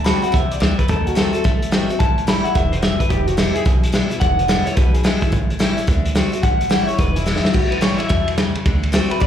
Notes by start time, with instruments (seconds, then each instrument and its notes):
0.04 steel-string acoustic guitar D3 A3 C4 F#4, clean electric guitar B5, snare, closed hi-hat
0.22 steel-string acoustic guitar C4 F#4, clean electric guitar F#5, muted upright bass stroke, closed hi-hat
0.32 upright bass C2, steel-string acoustic guitar C3, clean electric guitar E5, kick, snare, closed hi-hat
0.51 clean electric guitar D5, muted upright bass stroke, closed hi-hat
0.60 upright bass D2, steel-string acoustic guitar D3, clean electric guitar E5, snare, closed hi-hat
0.78 clean electric guitar B4, kick, closed hi-hat
0.88 upright bass D#2, steel-string acoustic guitar D#3, clean electric guitar A4, kick, closed hi-hat
1.07 clean electric guitar F#4, closed hi-hat
1.15 steel-string acoustic guitar D#3 A3 C4 F#4, clean electric guitar A4, snare, closed hi-hat
1.33 steel-string acoustic guitar C4 F#4, clean electric guitar A4, muted upright bass stroke, closed hi-hat
1.44 upright bass A1, steel-string acoustic guitar A3, kick, snare, closed hi-hat
1.62 closed hi-hat
1.71 steel-string acoustic guitar D#3 A3 C4 F#4, snare, closed hi-hat
1.89 steel-string acoustic guitar C4 F#4, muted upright bass stroke, closed hi-hat
1.99 upright bass A1, steel-string acoustic guitar A2, clean electric guitar A5, kick, closed hi-hat
2.18 closed hi-hat
2.27 steel-string acoustic guitar E3 G3 C#4 E4, clean electric guitar B5, snare, closed hi-hat
2.44 steel-string acoustic guitar C#4 E4, clean electric guitar F#5, muted upright bass stroke, closed hi-hat
2.55 upright bass E1, steel-string acoustic guitar G2, clean electric guitar E5, kick, snare, closed hi-hat
2.72 clean electric guitar C5, closed hi-hat
2.82 steel-string acoustic guitar F#2, clean electric guitar E5, snare, closed hi-hat
2.99 clean electric guitar B4, kick, closed hi-hat
3.09 upright bass E1, steel-string acoustic guitar E2, clean electric guitar G4, kick, closed hi-hat
3.27 clean electric guitar F#4, closed hi-hat
3.37 steel-string acoustic guitar D3 G#3 B3 E4, clean electric guitar G4, snare, closed hi-hat
3.54 steel-string acoustic guitar B3 E4, clean electric guitar G#4, muted upright bass stroke, closed hi-hat
3.65 upright bass B1, steel-string acoustic guitar B2, kick, snare, closed hi-hat
3.83 closed hi-hat
3.92 steel-string acoustic guitar D3 G#3 B3 E4, snare, closed hi-hat
4.10 steel-string acoustic guitar B3 E4, muted upright bass stroke, closed hi-hat
4.20 upright bass E1, steel-string acoustic guitar E2, clean electric guitar F#5, kick, closed hi-hat
4.39 closed hi-hat
4.48 steel-string acoustic guitar D3 G#3 B3 E4, snare, closed hi-hat
4.66 steel-string acoustic guitar B3 E4, clean electric guitar C#5, muted upright bass stroke, closed hi-hat
4.75 upright bass B1, steel-string acoustic guitar B2, clean electric guitar B4, kick, snare, closed hi-hat
4.93 clean electric guitar G#4, closed hi-hat
5.04 steel-string acoustic guitar D3 G#3 B3 E4, snare, closed hi-hat
5.21 steel-string acoustic guitar B3 E4, kick, closed hi-hat
5.32 upright bass A1, steel-string acoustic guitar A2, kick, closed hi-hat
5.50 closed hi-hat
5.59 steel-string acoustic guitar E3 G3 C#4 E4, snare, closed hi-hat
5.77 steel-string acoustic guitar C#4 E4, muted upright bass stroke, closed hi-hat
5.87 upright bass D2, steel-string acoustic guitar D3, kick, snare, closed hi-hat
6.05 closed hi-hat
6.15 steel-string acoustic guitar D3 A3 C4 F#4, snare, closed hi-hat
6.32 steel-string acoustic guitar C4 F#4, muted upright bass stroke, closed hi-hat
6.43 upright bass A1, steel-string acoustic guitar A2, clean electric guitar F#5, kick, closed hi-hat
6.61 closed hi-hat
6.69 steel-string acoustic guitar E3 G3 C#4 E4, snare, closed hi-hat
6.87 steel-string acoustic guitar C#4 E4, clean electric guitar C#5, muted upright bass stroke, closed hi-hat
6.98 upright bass E1, steel-string acoustic guitar E2, clean electric guitar B4, kick, snare, closed hi-hat
7.16 clean electric guitar E4, closed hi-hat
7.26 steel-string acoustic guitar D3 G#3 B3 E4, snare
7.36 snare
7.43 steel-string acoustic guitar B3 E4, muted upright bass stroke, snare
7.54 upright bass A1, steel-string acoustic guitar A2, clean electric guitar F#4, kick, crash
7.71 clean electric guitar B4, ride
7.81 steel-string acoustic guitar E3 G3 C#4 E4, clean electric guitar C#5, snare, ride
7.98 steel-string acoustic guitar C#4 E4, clean electric guitar E5, muted upright bass stroke, ride
8.09 upright bass E2, steel-string acoustic guitar B2, clean electric guitar E5, kick, snare, ride
8.28 ride
8.38 steel-string acoustic guitar C#3, snare, ride
8.55 muted upright bass stroke, ride
8.66 upright bass D2, steel-string acoustic guitar D3, kick, ride
8.83 ride
8.92 steel-string acoustic guitar D3 A3 C4 F#4, snare, ride
9.10 steel-string acoustic guitar C4 F#4, clean electric guitar B4, muted upright bass stroke, ride
9.20 upright bass A1, steel-string acoustic guitar F#2, clean electric guitar D5, kick, snare, ride